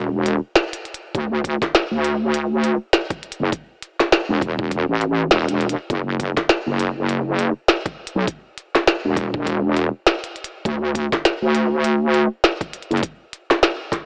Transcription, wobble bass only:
Already playing: E1
1.15 D2
1.91 D2
3.40 F#1
4.29 E1
4.88 A1
5.30 E1
5.90 F#1
6.66 F#1
8.15 B1
9.05 E1
10.65 D2
11.42 D2
12.91 F#1

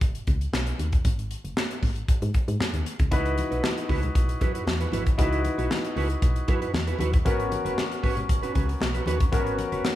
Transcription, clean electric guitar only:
3.11 E4 F#4 B4
3.37 muted clean electric guitar stroke
3.51 E4 F#4 B4
3.77 muted clean electric guitar stroke
3.89 E4 F#4 B4
4.03 muted clean electric guitar stroke
4.15 muted clean electric guitar stroke
4.29 muted clean electric guitar stroke
4.41 E4 F#4 B4
4.54 E4 F#4 B4
4.67 muted clean electric guitar stroke
4.80 E4 F#4 B4
4.92 E4 F#4 B4
5.06 muted clean electric guitar stroke
5.18 E4 F#4 B4
5.44 muted clean electric guitar stroke
5.58 E4 F#4 B4
5.84 muted clean electric guitar stroke
5.96 E4 F#4 B4
6.10 muted clean electric guitar stroke
6.22 muted clean electric guitar stroke
6.36 muted clean electric guitar stroke
6.48 E4 F#4 B4
6.61 E4 F#4 B4
6.87 E4 F#4 B4
6.99 E4 F#4 B4
7.13 muted clean electric guitar stroke
7.25 C#4 F#4 B4
7.51 muted clean electric guitar stroke
7.65 C#4 F#4 B4
7.91 muted clean electric guitar stroke
8.03 C#4 F#4 B4
8.17 muted clean electric guitar stroke
8.29 muted clean electric guitar stroke
8.43 C#4 F#4 B4
8.55 C#4 F#4 B4
8.69 muted clean electric guitar stroke
8.94 C#4 F#4 B4
9.06 C#4 F#4 B4
9.20 muted clean electric guitar stroke
9.32 C#4 F#4 B4
9.58 muted clean electric guitar stroke
9.72 C#4 F#4 B4

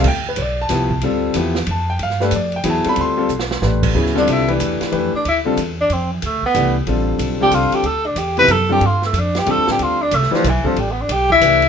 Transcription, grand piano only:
0.08 G5
0.29 B4
0.38 C#5 D5
0.61 A5
0.70 F3 B3 E4 G4
1.03 G3 C4 F4 A4
1.36 F3 B3 E4 G4
1.71 A5
1.90 G5
2.03 F5
2.21 A3 D4 G4 A4 B4
2.36 D5
2.56 G5
2.64 F#3 B3 E4 G#4
2.70 A5
2.85 G3 C4 F4 A4 B5
3.01 C6
3.17 G3 C4 F4 A4
3.62 A3 D4 G4 B4
3.94 C#3 F#3 B3 E4 G#4
4.15 D3 G3 C4 F4 A4
4.48 E3 A3 D4 G4 B4
4.92 E3 A3 D4 G4 B4
5.45 D3 G3 C4 F4 A4
6.54 E3 A3 D4 G4 B4
6.87 D3 G3 C4 F4 A4
7.40 D3 G3 C4 F4 A4
8.38 C3 F3 B3 E4 G4
8.69 D3 G3 C4 F4 A4
9.46 D3 G3 C4 F4 A4
10.31 E3 A3 D4 G4 B4
10.64 D3 G3 C4 F4 A4
11.41 E3 A3 D4 G4 B4

